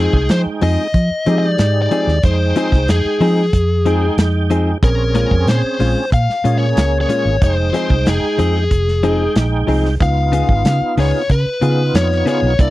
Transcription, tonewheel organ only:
0.00 0.87 G#3 medium
0.00 0.87 D#4 medium
0.00 0.87 G5 medium
1.27 2.19 G#3 medium
1.27 2.19 D#4 medium
1.27 2.19 G4 medium
2.24 3.46 G#3 medium
2.24 3.46 D#4 medium
2.24 3.46 G5 medium
3.86 4.78 G#3 medium
3.86 4.78 D#4 medium
3.86 4.78 G5 medium
4.83 6.05 C4 medium
4.83 6.05 C#4 medium
4.83 6.05 G#4 medium
6.45 7.37 A#3 medium
6.45 7.37 C#4 medium
6.45 7.37 G#4 medium
7.42 8.64 G#3 medium
7.42 8.64 D#4 medium
7.42 8.64 G5 medium
9.03 9.95 G#3 medium
9.03 9.95 D#4 medium
9.03 9.95 G5 medium
10.00 11.23 B3 medium
10.00 11.23 D#4 medium
10.00 11.23 F4 medium
11.62 12.54 B3 medium
11.62 12.54 D#4 medium
11.62 12.54 F4 medium
12.59 12.70 A#3 medium
12.59 12.70 D4 medium
12.59 12.70 E4 medium

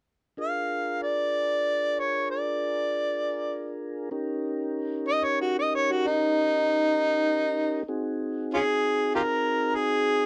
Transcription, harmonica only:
0.41 0.98 F5 medium
1.03 2.01 D5 medium
1.99 2.28 C#5 medium
2.31 3.80 D5 medium
5.09 5.26 D#5 medium
5.24 5.38 C#5 medium
5.41 5.54 F#4 medium
5.59 5.71 D#5 medium
5.75 5.93 C#5 medium
5.92 6.08 F#4 medium
6.07 7.87 D#4 loud
8.54 8.63 C#4 medium
8.54 8.60 F4 medium
8.54 9.13 G#4 medium
9.15 9.23 F4 medium
9.15 9.22 G4 medium
9.15 9.77 A#4 medium
9.75 10.26 G#4 medium

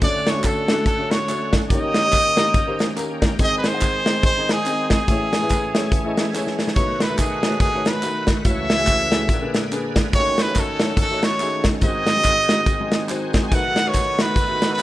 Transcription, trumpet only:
0.04 0.31 D5 medium
0.30 0.47 C#5 medium
0.46 0.86 A4 medium
0.86 1.13 A4 medium
1.11 1.53 C#5 medium
1.69 2.92 D#5 loud
3.43 3.57 D#5 loud
3.58 3.70 B4 medium
3.68 4.25 C5 loud
4.26 4.53 C5 loud
4.51 4.91 G#4 medium
4.92 6.31 G#4 medium
6.75 7.04 C#5 medium
7.02 7.20 B4 medium
7.18 7.61 G#4 medium
7.61 7.89 G#4 medium
7.87 8.29 B4 medium
8.47 9.68 E5 loud
10.15 10.43 C#5 loud
10.42 10.61 B4 medium
10.59 11.00 A4 medium
11.01 11.26 A4 medium
11.24 11.66 C#5 medium
11.85 13.07 D#5 loud
13.47 13.56 G#5 medium
13.54 13.90 F#5 loud
13.88 14.23 C#5 medium
14.22 14.71 B4 medium
14.73 14.82 B4 medium

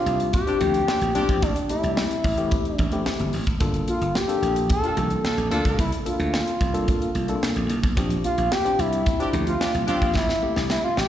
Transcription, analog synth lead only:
0.00 0.33 F4 loud
0.33 1.44 G4 loud
1.42 1.69 D4 loud
1.69 2.75 E4 loud
2.75 3.29 D4 loud
3.89 4.17 F4 loud
4.16 4.70 G4 loud
4.71 5.75 A4 loud
5.80 5.92 E4 loud
6.07 7.66 F4 loud
8.24 8.53 F4 loud
8.52 8.81 G4 loud
8.79 9.46 E4 loud
9.47 9.85 F4 loud
9.88 10.14 F4 loud
10.16 10.66 E4 loud
10.70 10.83 E4 loud
10.84 10.99 F4 medium
10.98 11.08 G4 loud

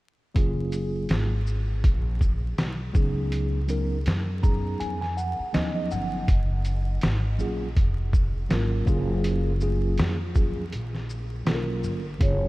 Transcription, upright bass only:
0.36 1.06 F#1 medium
1.10 1.80 G#1 medium
1.84 2.54 A#1 medium
2.58 2.93 B1 medium
2.95 4.02 C#2 medium
4.06 4.77 F#2 medium
4.81 5.36 F2 medium
5.39 muted upright bass stroke soft
5.55 5.90 D#2 medium
5.92 6.27 G1 medium
6.29 6.99 F#1 medium
7.03 7.38 G#1 medium
7.40 7.75 A#1 medium
7.77 8.47 F1 medium
8.51 8.86 G#1 medium
8.88 9.95 F#1 medium
9.99 10.69 F2 medium
10.73 11.43 A#1 medium
11.47 11.82 B1 medium
11.84 12.19 G1 medium
12.21 12.48 F#1 medium

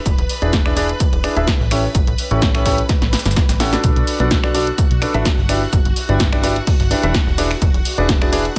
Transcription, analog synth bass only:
0.06 0.14 E1 medium
0.18 0.25 E1 medium
0.42 0.94 E1 medium
1.13 1.27 E1 medium
1.36 1.51 D1 medium
1.60 1.88 A1 medium
1.95 2.03 A1 loud
2.07 2.14 A1 medium
2.31 2.83 A1 medium
3.02 3.16 A1 medium
3.26 3.40 G1 medium
3.49 3.77 A1 loud
3.84 3.92 B1 loud
3.96 4.03 B1 medium
4.20 4.72 B1 medium
4.91 5.05 B1 medium
5.14 5.29 A1 medium
5.38 5.66 G1 medium
5.73 5.81 G1 loud
5.85 5.92 G1 medium
6.09 6.61 G1 medium
6.80 6.94 G1 medium
7.03 7.18 E1 medium
7.27 7.55 E1 medium
7.62 7.70 E1 loud
7.74 7.81 E1 medium
7.98 8.50 E1 medium

